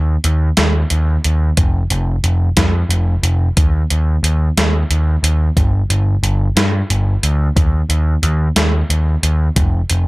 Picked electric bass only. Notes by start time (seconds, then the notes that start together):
Already playing: D#2
0.25 D#2
0.58 D#2
0.91 D#2
1.25 D#2
1.58 F1
1.91 F1
2.24 F1
2.57 F2
2.89 F1
3.23 F1
3.57 D#2
3.91 D#2
4.23 D#2
4.58 D#2
4.91 D#2
5.23 D#2
5.57 G1
5.90 G1
6.23 G1
6.56 G2
6.90 G1
7.23 D2
7.56 D#2
7.90 D#2
8.23 D#2
8.56 D#2
8.90 D#2
9.23 D#2
9.56 F1
9.91 F1